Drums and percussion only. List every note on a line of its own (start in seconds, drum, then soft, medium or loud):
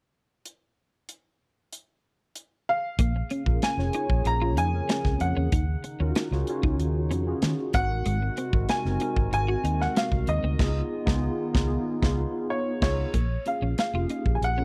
0.46 closed hi-hat medium
1.09 closed hi-hat medium
1.73 closed hi-hat medium
2.35 closed hi-hat medium
2.99 kick loud
2.99 closed hi-hat loud
3.30 closed hi-hat medium
3.46 kick medium
3.62 snare loud
3.62 closed hi-hat medium
3.79 snare soft
3.93 closed hi-hat medium
4.10 kick medium
4.25 closed hi-hat medium
4.57 closed hi-hat medium
4.89 snare loud
4.89 closed hi-hat medium
5.05 kick medium
5.05 snare soft
5.20 closed hi-hat medium
5.52 kick loud
5.52 closed hi-hat medium
5.84 closed hi-hat medium
6.15 snare loud
6.15 closed hi-hat medium
6.32 snare soft
6.47 closed hi-hat medium
6.63 kick medium
6.80 closed hi-hat medium
7.11 closed hi-hat medium
7.42 snare loud
7.42 closed hi-hat medium
7.73 kick loud
7.73 closed hi-hat medium
8.06 closed hi-hat medium
8.37 closed hi-hat medium
8.53 kick medium
8.69 snare loud
8.69 closed hi-hat medium
8.85 snare soft
9.00 closed hi-hat medium
9.16 kick medium
9.33 closed hi-hat medium
9.65 closed hi-hat medium
9.81 snare soft
9.96 snare loud
9.96 closed hi-hat medium
10.12 kick medium
10.27 closed hi-hat medium
10.59 kick loud
10.59 snare loud
10.59 crash medium
11.07 kick loud
11.07 snare loud
11.55 kick loud
11.55 snare loud
12.02 kick loud
12.02 snare loud
12.82 kick loud
12.82 snare loud
12.82 crash medium
13.14 kick medium
13.14 closed hi-hat medium
13.46 closed hi-hat medium
13.78 snare medium
13.78 closed hi-hat medium
14.10 closed hi-hat medium
14.26 kick medium
14.43 closed hi-hat medium